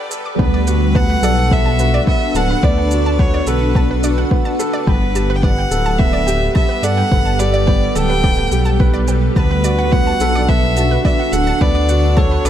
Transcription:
Already playing: G3 B3 D4 G4 A4 B4
0.10 A4, shaker
0.26 D6
0.38 D2 B3 D4 B4, kick
0.54 D5
0.67 F#4 F#5, shaker
0.95 B3 F#5 A5, kick
1.10 B4
1.22 B1 A4 D5, shaker
1.38 F#5
1.51 B3 E5, kick
1.66 A5
1.79 F#4 B4, shaker
1.88 F#5
1.94 D5
2.07 B3 E5 F#5, kick
2.35 D1 A4 F#5 A5, shaker
2.50 B4
2.63 D2 B3 D5, kick
2.78 F#5
2.91 F#4, shaker
3.06 A5
3.19 B3 B4 C#5, kick
3.34 D5
3.47 B1 A4 B4 F#5, shaker
3.75 B3 A5, kick
3.91 B4
4.03 F#4 D5, shaker
4.18 F#5
4.31 B3, kick
4.45 A5
4.59 A4 B4, shaker
4.73 D5
4.86 G1 G3 B3 B4 G5, kick
5.15 G4 A5, shaker
5.26 G4 B4
5.36 G5
5.42 B3 D5 F#5, kick
5.58 G5
5.71 D1 A4, shaker
5.86 A5
5.98 B3 B4 E5, kick
6.13 D5
6.27 G4 G5, shaker
6.55 B3 E5 A5, kick
6.69 B4
6.83 G2 A4 D5 F#5, shaker
6.97 G5
7.12 G1 B3, kick
7.25 A5
7.39 G4 B4 D5, shaker
7.54 D5
7.67 B3 G5, kick
7.95 D1 A4 G5 A5, shaker
8.10 B4
8.24 B3 D5, kick
8.37 D1 G5
8.52 B1 G4, shaker
8.65 A5
8.80 B4, kick
8.94 D5
9.08 B4 G5, shaker
9.36 D2 B3 D4 B4 A5, kick
9.46 A4
9.51 B4
9.64 F#4 D5, shaker
9.76 F#5
9.92 B3 F#5, kick
10.07 A5
10.20 B1 A4 B4, shaker
10.35 D5
10.44 B4 E5
10.49 B3 F#5, kick
10.77 F#4 A5, shaker
10.91 B4
11.04 B3 D5 E5, kick
11.19 F#5
11.32 D1 A4 F#5, shaker
11.47 A5
11.61 D2 B3 B4 D5, kick
11.75 D5
11.89 F#4 F#5, shaker
12.17 A4 C#5 A5, kick
12.31 B4
12.44 B1 A4 B4 D5, shaker

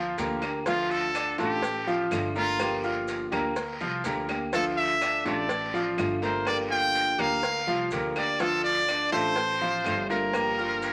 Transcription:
Already playing: D2 F3 F4 F5
0.17 D2 D3 F3 A#3 D4 G4 A#4 A#5, cowbell, short guiro, maracas
0.42 A#3 D4 G4, cowbell, short guiro, claves, maracas
0.65 D3 F3 A3 D4 F4 F5, cowbell, long guiro, maracas
0.91 A4, maracas
1.15 D4 D5 D6, cowbell, short guiro, claves, maracas
1.38 A1 A3 D4 F4 G4 A4 A5, cowbell, short guiro, maracas
1.62 muted nylon-string guitar stroke, cowbell, long guiro, maracas
1.87 F3 F4 F5, maracas
2.11 G1 D3 A3 D4 F4, cowbell, short guiro, claves, maracas
2.35 A3 A#3 D4 F4 A#4 A#5, short guiro, maracas
2.59 D3 F3 A#3 D4 G4, cowbell, long guiro, claves, maracas
2.83 F4 F5 F6, maracas
3.08 cowbell, short guiro, maracas
3.32 D2 F3 A#3 D4 G4 A#4 A#5, cowbell, short guiro, claves, maracas
3.56 muted nylon-string guitar stroke, cowbell, long guiro, maracas
3.80 C2 F3 F4 F5, maracas
4.04 D2 D3 F3 A#3 D4 G4 A#4 A#5, cowbell, short guiro, maracas
4.28 A#3 D4 G4, cowbell, short guiro, claves, maracas
4.52 D3 F3 A3 D4 F4 A4 F5, cowbell, long guiro, maracas
4.77 E5, maracas
5.01 D4 D5 D6, cowbell, short guiro, claves, maracas
5.25 A1 A3 D4 F4 A4 D5 A5, cowbell, short guiro, maracas
5.49 muted nylon-string guitar stroke, cowbell, long guiro, maracas
5.74 F3 F4 F5, maracas
5.97 G1 D3 A3 D4 F4, cowbell, short guiro, claves, maracas
6.22 A3 A#3 D4 F4 A#4 C5 A#5, short guiro, maracas
6.46 D3 F3 A#3 D4 G4 D5, cowbell, long guiro, claves, maracas
6.70 F4 F5 G5 F6, maracas
6.95 cowbell, short guiro, maracas
7.18 D2 F3 A#3 D4 G4 A#4 F5 A#5, cowbell, short guiro, claves, maracas
7.43 muted nylon-string guitar stroke, cowbell, long guiro, maracas
7.67 C2 F3 F4 F5, maracas
7.91 D2 D3 F3 A#3 D4 G4 A#4 A#5, cowbell, short guiro, maracas
8.16 A#3 D4 G4 D5, cowbell, short guiro, claves, maracas
8.39 D3 F3 A3 D4 F4 A4 F5, cowbell, long guiro, maracas
8.64 D5, maracas
8.88 D4 D5 D6, cowbell, short guiro, claves, maracas
9.12 A1 A3 D4 F4 A4 C5 A5, cowbell, short guiro, maracas
9.36 muted nylon-string guitar stroke, cowbell, long guiro, maracas
9.61 F3 F4 F5, maracas
9.84 G1 D3 A3 D4 F4, cowbell, short guiro, claves, maracas
10.09 A3 A#3 D4 F4 A#4 A#5, short guiro, maracas
10.33 D3 F3 A#3 D4 G4, cowbell, long guiro, claves, maracas
10.58 F4 F5 F6, maracas
10.82 cowbell, short guiro, maracas

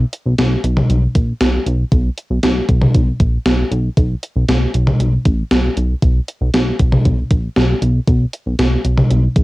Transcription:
0.13 closed hi-hat
0.25 B1
0.38 B1, snare, closed hi-hat
0.64 B1, closed hi-hat
0.77 mid tom
0.90 B1, closed hi-hat
1.15 A#1, kick, closed hi-hat
1.41 B1, snare, closed hi-hat
1.66 B1, closed hi-hat
1.92 B1, kick, closed hi-hat
2.18 closed hi-hat
2.31 B1
2.43 B1, snare, closed hi-hat
2.69 B1, kick, closed hi-hat
2.82 mid tom
2.95 B1, kick, closed hi-hat
3.20 A#1, kick, closed hi-hat
3.46 B1, snare, closed hi-hat
3.72 B1, closed hi-hat
3.97 B1, kick, closed hi-hat
4.23 closed hi-hat
4.36 B1
4.48 B1, snare, closed hi-hat
4.74 B1, closed hi-hat
4.87 mid tom
5.00 B1, closed hi-hat
5.25 A1, kick, closed hi-hat
5.51 B1, snare, closed hi-hat
5.77 B1, closed hi-hat
6.02 B1, kick, closed hi-hat
6.28 closed hi-hat
6.41 B1
6.54 B1, snare, closed hi-hat
6.79 B1, kick, closed hi-hat
6.92 mid tom
7.05 B1, kick, closed hi-hat
7.31 A#1, kick, closed hi-hat
7.56 B1, snare, closed hi-hat
7.82 B1, closed hi-hat
8.08 B1, kick, closed hi-hat
8.33 closed hi-hat
8.46 B1
8.59 B1, snare, closed hi-hat
8.84 B1, closed hi-hat
8.97 mid tom
9.10 B1, closed hi-hat
9.36 A#1, kick, closed hi-hat

